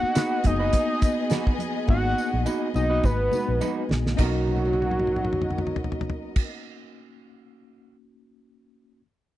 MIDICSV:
0, 0, Header, 1, 8, 480
1, 0, Start_track
1, 0, Key_signature, 5, "major"
1, 0, Tempo, 576369
1, 1569, Time_signature, 4, 2, 24, 8
1, 7806, End_track
2, 0, Start_track
2, 0, Title_t, "Analog synth lead"
2, 0, Program_c, 0, 81
2, 0, Note_on_c, 0, 78, 127
2, 385, Note_on_c, 0, 75, 110
2, 398, Note_off_c, 0, 78, 0
2, 1337, Note_off_c, 0, 75, 0
2, 1580, Note_on_c, 0, 78, 118
2, 2021, Note_off_c, 0, 78, 0
2, 2293, Note_on_c, 0, 75, 108
2, 2537, Note_on_c, 0, 71, 102
2, 2549, Note_off_c, 0, 75, 0
2, 3253, Note_off_c, 0, 71, 0
2, 3494, Note_on_c, 0, 66, 109
2, 5357, Note_off_c, 0, 66, 0
2, 7806, End_track
3, 0, Start_track
3, 0, Title_t, "String section"
3, 0, Program_c, 1, 48
3, 0, Note_on_c, 1, 59, 82
3, 0, Note_on_c, 1, 68, 84
3, 0, Note_on_c, 1, 75, 92
3, 3455, Note_off_c, 1, 59, 0
3, 3456, Note_off_c, 1, 68, 0
3, 3456, Note_off_c, 1, 75, 0
3, 3484, Note_on_c, 1, 70, 80
3, 3485, Note_on_c, 1, 59, 81
3, 3485, Note_on_c, 1, 75, 92
3, 5352, Note_off_c, 1, 59, 0
3, 5352, Note_off_c, 1, 70, 0
3, 5352, Note_off_c, 1, 75, 0
3, 7806, End_track
4, 0, Start_track
4, 0, Title_t, "Clean electric guitar"
4, 0, Program_c, 2, 27
4, 127, Note_on_c, 2, 63, 83
4, 129, Note_on_c, 2, 66, 84
4, 134, Note_on_c, 2, 71, 90
4, 307, Note_off_c, 2, 63, 0
4, 307, Note_off_c, 2, 66, 0
4, 310, Note_off_c, 2, 71, 0
4, 496, Note_on_c, 2, 71, 65
4, 504, Note_on_c, 2, 66, 54
4, 507, Note_on_c, 2, 63, 46
4, 625, Note_off_c, 2, 71, 0
4, 629, Note_off_c, 2, 66, 0
4, 630, Note_off_c, 2, 63, 0
4, 1088, Note_on_c, 2, 63, 68
4, 1094, Note_on_c, 2, 66, 70
4, 1095, Note_on_c, 2, 71, 78
4, 1267, Note_off_c, 2, 63, 0
4, 1270, Note_off_c, 2, 66, 0
4, 1270, Note_off_c, 2, 71, 0
4, 2047, Note_on_c, 2, 63, 67
4, 2051, Note_on_c, 2, 66, 76
4, 2055, Note_on_c, 2, 71, 69
4, 2226, Note_off_c, 2, 63, 0
4, 2228, Note_off_c, 2, 66, 0
4, 2230, Note_off_c, 2, 71, 0
4, 2413, Note_on_c, 2, 71, 50
4, 2419, Note_on_c, 2, 66, 54
4, 2422, Note_on_c, 2, 63, 44
4, 2543, Note_off_c, 2, 71, 0
4, 2546, Note_off_c, 2, 66, 0
4, 2547, Note_off_c, 2, 63, 0
4, 3006, Note_on_c, 2, 63, 78
4, 3010, Note_on_c, 2, 66, 71
4, 3015, Note_on_c, 2, 71, 89
4, 3185, Note_off_c, 2, 63, 0
4, 3187, Note_off_c, 2, 66, 0
4, 3190, Note_off_c, 2, 71, 0
4, 3475, Note_on_c, 2, 63, 67
4, 3497, Note_on_c, 2, 66, 70
4, 3515, Note_on_c, 2, 70, 72
4, 5817, Note_off_c, 2, 63, 0
4, 5817, Note_off_c, 2, 66, 0
4, 5817, Note_off_c, 2, 70, 0
4, 7806, End_track
5, 0, Start_track
5, 0, Title_t, "Tine electric piano"
5, 0, Program_c, 3, 4
5, 0, Control_c, 3, 64, 127
5, 0, Note_on_c, 3, 58, 99
5, 0, Note_on_c, 3, 59, 81
5, 0, Note_on_c, 3, 63, 86
5, 0, Note_on_c, 3, 66, 102
5, 323, Note_off_c, 3, 58, 0
5, 327, Note_off_c, 3, 59, 0
5, 331, Note_off_c, 3, 63, 0
5, 336, Note_off_c, 3, 66, 0
5, 360, Note_on_c, 3, 58, 74
5, 371, Note_on_c, 3, 59, 73
5, 378, Note_on_c, 3, 63, 69
5, 389, Note_on_c, 3, 66, 81
5, 1267, Note_off_c, 3, 58, 0
5, 1273, Note_off_c, 3, 59, 0
5, 1277, Note_off_c, 3, 63, 0
5, 1282, Note_off_c, 3, 66, 0
5, 1554, Note_on_c, 3, 58, 95
5, 1565, Note_on_c, 3, 59, 87
5, 1575, Note_on_c, 3, 63, 82
5, 1586, Note_on_c, 3, 66, 108
5, 2239, Note_off_c, 3, 58, 0
5, 2244, Note_off_c, 3, 59, 0
5, 2249, Note_off_c, 3, 63, 0
5, 2254, Note_off_c, 3, 66, 0
5, 2277, Note_on_c, 3, 58, 67
5, 2286, Note_on_c, 3, 59, 60
5, 2297, Note_on_c, 3, 63, 65
5, 2306, Note_on_c, 3, 66, 79
5, 2734, Note_off_c, 3, 58, 0
5, 2739, Note_off_c, 3, 59, 0
5, 2744, Note_off_c, 3, 63, 0
5, 2749, Note_off_c, 3, 66, 0
5, 2755, Note_on_c, 3, 56, 67
5, 2764, Note_on_c, 3, 59, 65
5, 2774, Note_on_c, 3, 63, 66
5, 2782, Note_on_c, 3, 66, 83
5, 3430, Note_on_c, 3, 58, 77
5, 3439, Note_off_c, 3, 56, 0
5, 3444, Note_off_c, 3, 59, 0
5, 3449, Note_off_c, 3, 63, 0
5, 3453, Note_off_c, 3, 66, 0
5, 3467, Note_on_c, 3, 61, 72
5, 3498, Control_c, 3, 64, 0
5, 3504, Note_on_c, 3, 63, 73
5, 3542, Note_on_c, 3, 66, 80
5, 3630, Control_c, 3, 64, 127
5, 5325, Note_off_c, 3, 58, 0
5, 5343, Note_off_c, 3, 61, 0
5, 5362, Note_off_c, 3, 63, 0
5, 5381, Note_off_c, 3, 66, 0
5, 7504, Control_c, 3, 64, 0
5, 7806, End_track
6, 0, Start_track
6, 0, Title_t, "Fingered electric bass"
6, 0, Program_c, 4, 33
6, 375, Note_on_c, 4, 30, 92
6, 572, Note_off_c, 4, 30, 0
6, 1572, Note_on_c, 4, 32, 98
6, 1770, Note_off_c, 4, 32, 0
6, 1945, Note_on_c, 4, 34, 90
6, 2034, Note_off_c, 4, 34, 0
6, 2291, Note_on_c, 4, 35, 91
6, 2490, Note_off_c, 4, 35, 0
6, 2532, Note_on_c, 4, 32, 89
6, 2730, Note_off_c, 4, 32, 0
6, 2902, Note_on_c, 4, 34, 78
6, 2992, Note_off_c, 4, 34, 0
6, 3252, Note_on_c, 4, 34, 80
6, 3450, Note_off_c, 4, 34, 0
6, 3489, Note_on_c, 4, 35, 89
6, 5354, Note_off_c, 4, 35, 0
6, 7806, End_track
7, 0, Start_track
7, 0, Title_t, "Muted fingered electric bass strokes"
7, 24, Note_on_c, 9, 29, 47
7, 107, Note_off_c, 9, 29, 0
7, 7806, End_track
8, 0, Start_track
8, 0, Title_t, "Drums"
8, 128, Note_on_c, 9, 42, 70
8, 129, Note_on_c, 9, 54, 85
8, 132, Note_on_c, 9, 63, 63
8, 138, Note_on_c, 9, 38, 110
8, 211, Note_off_c, 9, 42, 0
8, 212, Note_off_c, 9, 54, 0
8, 216, Note_off_c, 9, 63, 0
8, 221, Note_off_c, 9, 38, 0
8, 365, Note_on_c, 9, 42, 80
8, 368, Note_on_c, 9, 62, 48
8, 368, Note_on_c, 9, 64, 66
8, 373, Note_on_c, 9, 36, 82
8, 375, Note_on_c, 9, 54, 44
8, 448, Note_off_c, 9, 42, 0
8, 451, Note_off_c, 9, 62, 0
8, 451, Note_off_c, 9, 64, 0
8, 456, Note_off_c, 9, 36, 0
8, 458, Note_off_c, 9, 54, 0
8, 606, Note_on_c, 9, 42, 83
8, 611, Note_on_c, 9, 36, 87
8, 611, Note_on_c, 9, 62, 56
8, 615, Note_on_c, 9, 54, 50
8, 689, Note_off_c, 9, 42, 0
8, 694, Note_off_c, 9, 36, 0
8, 694, Note_off_c, 9, 62, 0
8, 698, Note_off_c, 9, 54, 0
8, 843, Note_on_c, 9, 62, 32
8, 849, Note_on_c, 9, 42, 78
8, 852, Note_on_c, 9, 36, 99
8, 852, Note_on_c, 9, 54, 51
8, 927, Note_off_c, 9, 62, 0
8, 932, Note_off_c, 9, 42, 0
8, 935, Note_off_c, 9, 36, 0
8, 935, Note_off_c, 9, 54, 0
8, 1081, Note_on_c, 9, 42, 73
8, 1088, Note_on_c, 9, 63, 71
8, 1090, Note_on_c, 9, 54, 73
8, 1095, Note_on_c, 9, 38, 96
8, 1164, Note_off_c, 9, 42, 0
8, 1171, Note_off_c, 9, 63, 0
8, 1173, Note_off_c, 9, 54, 0
8, 1178, Note_off_c, 9, 38, 0
8, 1223, Note_on_c, 9, 36, 96
8, 1306, Note_off_c, 9, 36, 0
8, 1321, Note_on_c, 9, 63, 69
8, 1332, Note_on_c, 9, 42, 74
8, 1404, Note_off_c, 9, 63, 0
8, 1416, Note_off_c, 9, 42, 0
8, 1564, Note_on_c, 9, 62, 51
8, 1570, Note_on_c, 9, 36, 107
8, 1647, Note_off_c, 9, 62, 0
8, 1653, Note_off_c, 9, 36, 0
8, 1818, Note_on_c, 9, 54, 50
8, 1901, Note_off_c, 9, 54, 0
8, 2048, Note_on_c, 9, 63, 64
8, 2053, Note_on_c, 9, 54, 82
8, 2131, Note_off_c, 9, 63, 0
8, 2136, Note_off_c, 9, 54, 0
8, 2285, Note_on_c, 9, 62, 47
8, 2296, Note_on_c, 9, 54, 41
8, 2368, Note_off_c, 9, 62, 0
8, 2380, Note_off_c, 9, 54, 0
8, 2527, Note_on_c, 9, 62, 54
8, 2527, Note_on_c, 9, 64, 76
8, 2530, Note_on_c, 9, 36, 79
8, 2538, Note_on_c, 9, 54, 48
8, 2610, Note_off_c, 9, 62, 0
8, 2610, Note_off_c, 9, 64, 0
8, 2613, Note_off_c, 9, 36, 0
8, 2622, Note_off_c, 9, 54, 0
8, 2761, Note_on_c, 9, 62, 31
8, 2761, Note_on_c, 9, 64, 70
8, 2771, Note_on_c, 9, 54, 53
8, 2845, Note_off_c, 9, 62, 0
8, 2845, Note_off_c, 9, 64, 0
8, 2854, Note_off_c, 9, 54, 0
8, 3008, Note_on_c, 9, 54, 71
8, 3010, Note_on_c, 9, 63, 69
8, 3091, Note_off_c, 9, 54, 0
8, 3093, Note_off_c, 9, 63, 0
8, 3242, Note_on_c, 9, 63, 63
8, 3258, Note_on_c, 9, 38, 97
8, 3325, Note_off_c, 9, 63, 0
8, 3341, Note_off_c, 9, 38, 0
8, 3386, Note_on_c, 9, 38, 82
8, 3470, Note_off_c, 9, 38, 0
8, 3485, Note_on_c, 9, 62, 82
8, 3486, Note_on_c, 9, 49, 92
8, 3487, Note_on_c, 9, 36, 100
8, 3490, Note_on_c, 9, 54, 75
8, 3568, Note_off_c, 9, 62, 0
8, 3569, Note_off_c, 9, 49, 0
8, 3570, Note_off_c, 9, 36, 0
8, 3573, Note_off_c, 9, 54, 0
8, 3727, Note_on_c, 9, 48, 44
8, 3802, Note_off_c, 9, 48, 0
8, 3802, Note_on_c, 9, 48, 46
8, 3876, Note_off_c, 9, 48, 0
8, 3876, Note_on_c, 9, 48, 45
8, 3941, Note_off_c, 9, 48, 0
8, 3941, Note_on_c, 9, 48, 49
8, 4015, Note_off_c, 9, 48, 0
8, 4015, Note_on_c, 9, 48, 50
8, 4091, Note_on_c, 9, 47, 51
8, 4098, Note_off_c, 9, 48, 0
8, 4159, Note_off_c, 9, 47, 0
8, 4159, Note_on_c, 9, 47, 56
8, 4224, Note_off_c, 9, 47, 0
8, 4224, Note_on_c, 9, 47, 57
8, 4300, Note_off_c, 9, 47, 0
8, 4300, Note_on_c, 9, 47, 55
8, 4369, Note_off_c, 9, 47, 0
8, 4369, Note_on_c, 9, 47, 64
8, 4436, Note_on_c, 9, 45, 69
8, 4452, Note_off_c, 9, 47, 0
8, 4511, Note_off_c, 9, 45, 0
8, 4511, Note_on_c, 9, 45, 70
8, 4585, Note_off_c, 9, 45, 0
8, 4585, Note_on_c, 9, 45, 69
8, 4650, Note_off_c, 9, 45, 0
8, 4650, Note_on_c, 9, 45, 74
8, 4720, Note_off_c, 9, 45, 0
8, 4720, Note_on_c, 9, 45, 76
8, 4798, Note_on_c, 9, 43, 85
8, 4803, Note_off_c, 9, 45, 0
8, 4866, Note_off_c, 9, 43, 0
8, 4866, Note_on_c, 9, 43, 72
8, 4929, Note_off_c, 9, 43, 0
8, 4929, Note_on_c, 9, 43, 83
8, 5005, Note_off_c, 9, 43, 0
8, 5005, Note_on_c, 9, 43, 81
8, 5077, Note_off_c, 9, 43, 0
8, 5077, Note_on_c, 9, 43, 86
8, 5160, Note_off_c, 9, 43, 0
8, 5294, Note_on_c, 9, 49, 92
8, 5298, Note_on_c, 9, 36, 96
8, 5378, Note_off_c, 9, 49, 0
8, 5381, Note_off_c, 9, 36, 0
8, 7806, End_track
0, 0, End_of_file